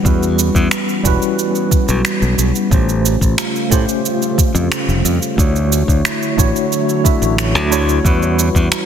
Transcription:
Already playing: E3 G3 C#4 E4 F#4 B4
0.03 E2 G3 B3 C#4 E4 F#4 B4, kick, cabasa
0.23 cabasa
0.39 cabasa
0.55 E2, kick, cabasa
0.71 finger snap, cabasa
0.89 cabasa
1.03 E1 G3 C#4 E4 F#4 B4, kick, cabasa
1.22 cabasa
1.39 cabasa
1.55 cabasa
1.71 kick, cabasa
1.89 B1, cabasa
2.05 finger snap, cabasa
2.22 B1, cabasa
2.38 B1, cabasa
2.55 cabasa
2.70 A1 C#3 A3 C#4 F4 G4 C5, kick, cabasa
2.89 cabasa
3.06 cabasa
3.21 A1, kick, cabasa
3.38 finger snap, cabasa
3.56 cabasa
3.70 A2 A3 C#4 F4 G4 C5, kick, cabasa
3.89 cabasa
4.06 cabasa
4.22 cabasa
4.38 kick, cabasa
4.55 F2, cabasa
4.72 finger snap, cabasa
4.88 F1, cabasa
5.05 F2, cabasa
5.22 cabasa
5.36 D2 D3 F#3 A3 D4 E4 F#4 C#5, kick, cabasa
5.56 cabasa
5.73 cabasa
5.88 D2, kick, cabasa
6.05 finger snap, cabasa
6.23 cabasa
6.37 A1 A3 D4 E4 F#4 C#5, kick, cabasa
6.56 cabasa
6.73 cabasa
6.89 cabasa
7.04 A3 D4 E4 F#4 E5, kick, cabasa
7.22 A1, cabasa
7.38 finger snap, cabasa
7.55 D2, cabasa
7.71 A3 D4 E4 F#4 C#5, cabasa
7.89 cabasa
8.03 E2 E3 G3 C#4 E4 F#4 B4, kick, cabasa
8.23 cabasa
8.39 cabasa
8.55 E2, kick, cabasa
8.72 finger snap, cabasa

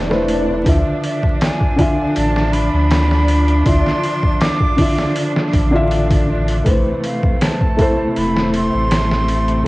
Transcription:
Already playing: E1 C3 A3 E4 B4 C5, swell
0.09 A3 E4 B4 C5, snare
0.28 open hi-hat
0.49 E1
0.64 D2 D3 F3 D4 F4, kick, open hi-hat
0.69 E5
1.03 E5, open hi-hat
1.23 kick
1.41 G#5, snare, open hi-hat
1.61 kick
1.76 D3 D4 F4, kick, open hi-hat
1.81 E5
2.15 A1 A5, open hi-hat
2.36 snare
2.53 B5, open hi-hat
2.74 D2
2.91 snare, open hi-hat
3.11 snare
3.28 open hi-hat
3.48 closed hi-hat
3.64 D2 D3 D4 F4 C6, kick, open hi-hat
3.69 E5
3.86 snare
4.03 open hi-hat
4.23 kick
4.41 D6, snare, open hi-hat
4.60 kick
4.77 D3 D4 F4, kick, open hi-hat
4.81 E5
4.99 snare
5.16 open hi-hat
5.36 snare
5.53 A1, kick, open hi-hat
5.71 D3 D4 F4
5.76 E5
5.91 open hi-hat
6.11 kick, open hi-hat
6.48 open hi-hat
6.64 A1 C3 E3 A3 B4, kick, open hi-hat
6.69 C5
7.04 F5, open hi-hat
7.23 kick
7.41 A5, snare, open hi-hat
7.61 kick
7.77 A3 E4 A4, kick, open hi-hat
7.81 C5
8.16 E1 B5, open hi-hat
8.37 snare
8.54 C6, open hi-hat
8.74 A1
8.91 snare, open hi-hat
9.11 snare
9.28 open hi-hat
9.48 closed hi-hat
9.64 A3

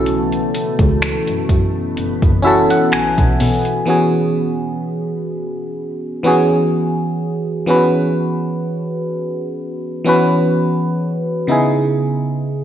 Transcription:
Already playing: B1 B2 E3 A3 C#4 E4 F#4 A4
0.06 closed hi-hat
0.32 closed hi-hat
0.54 closed hi-hat
0.79 C#2, kick, closed hi-hat
1.02 finger snap, closed hi-hat
1.27 F#2, closed hi-hat
1.49 F#2 B3, kick, closed hi-hat
1.97 F#1, closed hi-hat
2.22 F#1, kick, closed hi-hat
2.42 C#4 E4 F#4 E5
2.47 A4
2.70 F#5, closed hi-hat
2.92 B1 G#5, finger snap, closed hi-hat
3.18 B1, kick, closed hi-hat
3.40 B2, open hi-hat
3.65 closed hi-hat
3.86 E3 B3 C#4 F#4
3.90 G#4
6.23 E3 B3 C#4 F#4
6.27 G#4
7.66 E3 B3 C#4 F#4
7.70 B4
10.04 E3 B3 C#4 F#4
10.09 B4
11.47 C#3 B3 D#4 E4
11.52 G#4

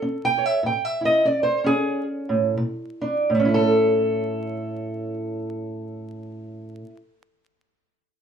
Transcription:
Already playing: A4
0.02 C#4
0.25 G5
0.38 C#5
0.46 E5
0.63 A2 G5
0.85 E5
1.01 E4
1.05 D#5
1.25 C#4 D5
1.43 C5
1.64 C#4 G#4
2.29 A2
2.57 A#2
3.01 D4
3.30 A2
3.35 A3
3.39 C#4
3.45 E4
3.54 A4

